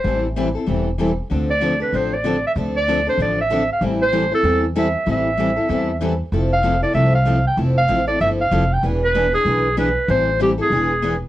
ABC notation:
X:1
M:4/4
L:1/8
Q:"Swing" 1/4=191
K:Am
V:1 name="Clarinet"
c z6 z | z d2 B c d2 e | z d2 c d e2 f | z c2 A2 z e2 |
e6 z2 | z f2 d e f2 g | z f2 d e f2 g | z B2 ^G3 B2 |
c2 G ^G4 z |]
V:2 name="Steel-string acoustic guitar"
[E,G,CEA] z [E,G,CEA] [CEA] [E,G,CEA] z [E,G,CEA] z | [D,F,CDA] z [D,F,CDA] [CDA] [D,F,CDA] z [D,F,CDA] z | [D,F,CDA] z [D,F,CDA] [CDA] [D,F,CDA] z [D,F,CDA] z | [E,G,CEA] z [E,G,CEA] [CEA] [E,G,CEA] z [E,G,CEA] z |
[E,G,CEA] z [E,G,CEA] [CEA] [E,G,CEA] z [E,G,CEA] z | [F,CEA] z [F,CEA] [CEA] [F,CEA] z [F,CEA] z | [F,CEA] z [F,CEA] [CEA] [F,A] z [F,CEA] z | [E,B,D^G] z [E,B,DG] [B,DG] [E,B,DG] z [E,B,DG] z |
[E,G,CEA] z [E,G,CEA] [CEA] [E,B,D^G] z [E,B,DG] z |]
V:3 name="Steel-string acoustic guitar"
[E,G,CEA] z [E,G,CEA] z [E,G,CEA] z [E,G,CEA] z | [D,F,CDA] z [D,F,CDA] z [D,F,CDA] z [D,F,CDA] z | [D,F,CDA] z [D,F,CDA] z [D,F,CDA] z [D,F,CDA] z | [E,G,CEA] z [E,G,CEA] z [E,G,CEA] z [E,G,CEA] z |
[E,G,CEA] z [E,G,CEA] z [E,G,CEA] z [E,G,CEA] z | [F,A,CEA] z [F,A,CEA] z [F,A,CEA] z [F,A,CEA] z | [F,A,CEA] z [F,A,CEA] z [F,A,CEA] z [F,A,CEA] z | [E,B,D^GB] z [E,B,DGB] z [E,B,DGB] z [E,B,DGB] z |
[E,G,CEA] z [E,G,CEA] z [E,B,D^GB] z [E,B,DGB] z |]
V:4 name="Upright bass" clef=bass
A,,,4 E,,,4 | D,,4 A,,,4 | D,,4 A,,,4 | A,,,4 E,,4 |
A,,,4 E,,4 | F,,,4 C,,4 | F,,,2 A,,,2 G,,,2 F,,,2 | E,,,4 B,,,4 |
A,,,4 E,,,4 |]